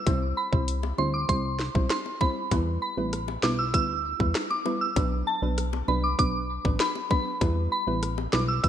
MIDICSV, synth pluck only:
0, 0, Header, 1, 2, 480
1, 0, Start_track
1, 0, Key_signature, 1, "minor"
1, 0, Tempo, 612245
1, 52, Time_signature, 4, 2, 24, 8
1, 6810, End_track
2, 0, Start_track
2, 0, Title_t, "Synth pluck"
2, 0, Program_c, 0, 84
2, 49, Note_on_c, 0, 55, 94
2, 50, Note_on_c, 0, 60, 88
2, 52, Note_on_c, 0, 64, 87
2, 54, Note_on_c, 0, 72, 110
2, 381, Note_off_c, 0, 55, 0
2, 382, Note_off_c, 0, 60, 0
2, 383, Note_off_c, 0, 64, 0
2, 384, Note_off_c, 0, 72, 0
2, 409, Note_on_c, 0, 55, 79
2, 410, Note_on_c, 0, 60, 72
2, 412, Note_on_c, 0, 64, 73
2, 414, Note_on_c, 0, 72, 89
2, 568, Note_off_c, 0, 55, 0
2, 569, Note_off_c, 0, 60, 0
2, 570, Note_off_c, 0, 64, 0
2, 571, Note_off_c, 0, 72, 0
2, 769, Note_on_c, 0, 55, 80
2, 770, Note_on_c, 0, 60, 73
2, 772, Note_on_c, 0, 64, 70
2, 774, Note_on_c, 0, 72, 85
2, 928, Note_off_c, 0, 55, 0
2, 929, Note_off_c, 0, 60, 0
2, 930, Note_off_c, 0, 64, 0
2, 931, Note_off_c, 0, 72, 0
2, 1009, Note_on_c, 0, 55, 94
2, 1010, Note_on_c, 0, 60, 87
2, 1012, Note_on_c, 0, 64, 86
2, 1014, Note_on_c, 0, 72, 105
2, 1168, Note_off_c, 0, 55, 0
2, 1169, Note_off_c, 0, 60, 0
2, 1170, Note_off_c, 0, 64, 0
2, 1171, Note_off_c, 0, 72, 0
2, 1369, Note_on_c, 0, 55, 79
2, 1371, Note_on_c, 0, 60, 77
2, 1372, Note_on_c, 0, 64, 76
2, 1373, Note_on_c, 0, 72, 90
2, 1528, Note_off_c, 0, 55, 0
2, 1529, Note_off_c, 0, 60, 0
2, 1530, Note_off_c, 0, 64, 0
2, 1531, Note_off_c, 0, 72, 0
2, 1729, Note_on_c, 0, 55, 78
2, 1731, Note_on_c, 0, 60, 73
2, 1733, Note_on_c, 0, 64, 74
2, 1734, Note_on_c, 0, 72, 86
2, 1889, Note_off_c, 0, 55, 0
2, 1889, Note_off_c, 0, 60, 0
2, 1890, Note_off_c, 0, 64, 0
2, 1891, Note_off_c, 0, 72, 0
2, 1969, Note_on_c, 0, 55, 95
2, 1971, Note_on_c, 0, 59, 88
2, 1973, Note_on_c, 0, 64, 87
2, 1974, Note_on_c, 0, 71, 105
2, 2302, Note_off_c, 0, 55, 0
2, 2302, Note_off_c, 0, 59, 0
2, 2303, Note_off_c, 0, 64, 0
2, 2304, Note_off_c, 0, 71, 0
2, 2329, Note_on_c, 0, 55, 79
2, 2331, Note_on_c, 0, 59, 75
2, 2333, Note_on_c, 0, 64, 72
2, 2334, Note_on_c, 0, 71, 86
2, 2489, Note_off_c, 0, 55, 0
2, 2490, Note_off_c, 0, 59, 0
2, 2490, Note_off_c, 0, 64, 0
2, 2491, Note_off_c, 0, 71, 0
2, 2690, Note_on_c, 0, 55, 78
2, 2691, Note_on_c, 0, 59, 69
2, 2693, Note_on_c, 0, 64, 73
2, 2695, Note_on_c, 0, 71, 83
2, 2849, Note_off_c, 0, 55, 0
2, 2850, Note_off_c, 0, 59, 0
2, 2850, Note_off_c, 0, 64, 0
2, 2851, Note_off_c, 0, 71, 0
2, 2930, Note_on_c, 0, 55, 90
2, 2931, Note_on_c, 0, 59, 89
2, 2933, Note_on_c, 0, 64, 82
2, 2935, Note_on_c, 0, 71, 102
2, 3089, Note_off_c, 0, 55, 0
2, 3090, Note_off_c, 0, 59, 0
2, 3090, Note_off_c, 0, 64, 0
2, 3091, Note_off_c, 0, 71, 0
2, 3289, Note_on_c, 0, 55, 81
2, 3291, Note_on_c, 0, 59, 76
2, 3292, Note_on_c, 0, 64, 75
2, 3294, Note_on_c, 0, 71, 93
2, 3449, Note_off_c, 0, 55, 0
2, 3449, Note_off_c, 0, 59, 0
2, 3450, Note_off_c, 0, 64, 0
2, 3451, Note_off_c, 0, 71, 0
2, 3649, Note_on_c, 0, 55, 77
2, 3651, Note_on_c, 0, 59, 74
2, 3652, Note_on_c, 0, 64, 73
2, 3654, Note_on_c, 0, 71, 86
2, 3809, Note_off_c, 0, 55, 0
2, 3809, Note_off_c, 0, 59, 0
2, 3810, Note_off_c, 0, 64, 0
2, 3811, Note_off_c, 0, 71, 0
2, 3890, Note_on_c, 0, 54, 97
2, 3891, Note_on_c, 0, 59, 89
2, 3893, Note_on_c, 0, 62, 87
2, 3894, Note_on_c, 0, 71, 105
2, 4222, Note_off_c, 0, 54, 0
2, 4223, Note_off_c, 0, 59, 0
2, 4223, Note_off_c, 0, 62, 0
2, 4224, Note_off_c, 0, 71, 0
2, 4250, Note_on_c, 0, 54, 81
2, 4251, Note_on_c, 0, 59, 74
2, 4253, Note_on_c, 0, 62, 73
2, 4254, Note_on_c, 0, 71, 89
2, 4409, Note_off_c, 0, 54, 0
2, 4409, Note_off_c, 0, 59, 0
2, 4410, Note_off_c, 0, 62, 0
2, 4411, Note_off_c, 0, 71, 0
2, 4610, Note_on_c, 0, 54, 80
2, 4611, Note_on_c, 0, 59, 70
2, 4613, Note_on_c, 0, 62, 70
2, 4614, Note_on_c, 0, 71, 89
2, 4769, Note_off_c, 0, 54, 0
2, 4770, Note_off_c, 0, 59, 0
2, 4770, Note_off_c, 0, 62, 0
2, 4771, Note_off_c, 0, 71, 0
2, 4849, Note_on_c, 0, 54, 94
2, 4850, Note_on_c, 0, 59, 88
2, 4852, Note_on_c, 0, 62, 88
2, 4854, Note_on_c, 0, 71, 103
2, 5008, Note_off_c, 0, 54, 0
2, 5009, Note_off_c, 0, 59, 0
2, 5010, Note_off_c, 0, 62, 0
2, 5011, Note_off_c, 0, 71, 0
2, 5209, Note_on_c, 0, 54, 83
2, 5211, Note_on_c, 0, 59, 74
2, 5213, Note_on_c, 0, 62, 76
2, 5214, Note_on_c, 0, 71, 95
2, 5369, Note_off_c, 0, 54, 0
2, 5370, Note_off_c, 0, 59, 0
2, 5370, Note_off_c, 0, 62, 0
2, 5371, Note_off_c, 0, 71, 0
2, 5569, Note_on_c, 0, 54, 81
2, 5571, Note_on_c, 0, 59, 72
2, 5572, Note_on_c, 0, 62, 75
2, 5574, Note_on_c, 0, 71, 85
2, 5728, Note_off_c, 0, 54, 0
2, 5729, Note_off_c, 0, 59, 0
2, 5730, Note_off_c, 0, 62, 0
2, 5731, Note_off_c, 0, 71, 0
2, 5809, Note_on_c, 0, 55, 95
2, 5811, Note_on_c, 0, 59, 89
2, 5812, Note_on_c, 0, 64, 86
2, 5814, Note_on_c, 0, 71, 104
2, 6141, Note_off_c, 0, 55, 0
2, 6142, Note_off_c, 0, 59, 0
2, 6143, Note_off_c, 0, 64, 0
2, 6144, Note_off_c, 0, 71, 0
2, 6170, Note_on_c, 0, 55, 80
2, 6171, Note_on_c, 0, 59, 74
2, 6173, Note_on_c, 0, 64, 72
2, 6174, Note_on_c, 0, 71, 85
2, 6329, Note_off_c, 0, 55, 0
2, 6330, Note_off_c, 0, 59, 0
2, 6330, Note_off_c, 0, 64, 0
2, 6331, Note_off_c, 0, 71, 0
2, 6530, Note_on_c, 0, 55, 83
2, 6532, Note_on_c, 0, 59, 72
2, 6533, Note_on_c, 0, 64, 73
2, 6534, Note_on_c, 0, 71, 91
2, 6689, Note_off_c, 0, 55, 0
2, 6690, Note_off_c, 0, 59, 0
2, 6690, Note_off_c, 0, 64, 0
2, 6691, Note_off_c, 0, 71, 0
2, 6770, Note_on_c, 0, 55, 92
2, 6771, Note_on_c, 0, 59, 91
2, 6773, Note_on_c, 0, 64, 85
2, 6774, Note_on_c, 0, 71, 108
2, 6810, Note_off_c, 0, 55, 0
2, 6810, Note_off_c, 0, 59, 0
2, 6810, Note_off_c, 0, 64, 0
2, 6810, Note_off_c, 0, 71, 0
2, 6810, End_track
0, 0, End_of_file